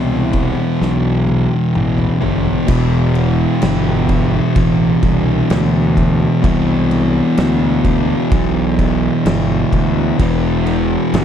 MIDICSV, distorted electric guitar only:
0, 0, Header, 1, 2, 480
1, 0, Start_track
1, 0, Key_signature, 1, "minor"
1, 0, Tempo, 938967
1, 1373, Time_signature, 4, 2, 24, 8
1, 5749, End_track
2, 0, Start_track
2, 0, Title_t, "Distorted electric guitar"
2, 0, Program_c, 0, 30
2, 0, Note_on_c, 0, 40, 102
2, 0, Note_on_c, 0, 47, 107
2, 0, Note_on_c, 0, 52, 105
2, 1117, Note_off_c, 0, 40, 0
2, 1122, Note_off_c, 0, 47, 0
2, 1122, Note_off_c, 0, 52, 0
2, 1129, Note_on_c, 0, 52, 71
2, 1137, Note_on_c, 0, 47, 74
2, 1144, Note_on_c, 0, 40, 62
2, 1356, Note_off_c, 0, 52, 0
2, 1360, Note_off_c, 0, 47, 0
2, 1362, Note_off_c, 0, 40, 0
2, 1368, Note_on_c, 0, 40, 98
2, 1375, Note_on_c, 0, 47, 119
2, 1382, Note_on_c, 0, 52, 110
2, 3274, Note_off_c, 0, 40, 0
2, 3278, Note_off_c, 0, 47, 0
2, 3281, Note_off_c, 0, 52, 0
2, 3284, Note_on_c, 0, 40, 107
2, 3293, Note_on_c, 0, 47, 115
2, 3299, Note_on_c, 0, 52, 117
2, 5192, Note_off_c, 0, 40, 0
2, 5197, Note_off_c, 0, 47, 0
2, 5200, Note_off_c, 0, 52, 0
2, 5207, Note_on_c, 0, 40, 120
2, 5214, Note_on_c, 0, 47, 108
2, 5220, Note_on_c, 0, 52, 115
2, 5749, Note_off_c, 0, 40, 0
2, 5749, Note_off_c, 0, 47, 0
2, 5749, Note_off_c, 0, 52, 0
2, 5749, End_track
0, 0, End_of_file